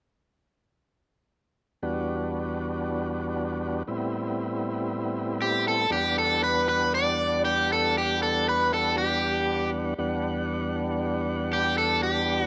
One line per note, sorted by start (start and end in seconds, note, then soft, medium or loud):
1.82 3.83 E2 medium
1.82 3.83 G3 medium
1.82 3.83 B3 medium
1.82 3.83 D4 soft
1.82 3.83 F#4 medium
3.87 5.87 A2 medium
3.87 5.87 G3 medium
3.87 5.87 B3 soft
3.87 5.87 C4 medium
3.87 5.87 E4 medium
5.42 5.65 G4 medium
5.68 5.91 A4 medium
5.90 9.94 E2 medium
5.90 9.94 G3 soft
5.90 9.94 B3 medium
5.90 9.94 D4 soft
5.90 6.18 G4 medium
5.90 9.94 F#5 medium
6.19 6.43 A4 medium
6.44 6.68 B4 medium
6.69 6.94 B4 medium
6.95 7.41 D5 medium
7.45 7.71 G4 medium
7.73 7.95 A4 medium
7.98 8.20 G4 medium
8.23 8.48 A4 medium
8.49 8.73 B4 medium
8.74 8.98 A4 medium
8.98 9.70 G4 medium
9.98 12.47 E2 medium
9.98 12.47 G3 medium
9.98 12.47 B3 medium
9.98 12.47 D4 medium
9.98 12.47 F#5 medium
11.53 11.78 G4 medium
11.78 12.03 A4 medium
12.03 12.41 G4 medium
12.41 12.47 F#4 medium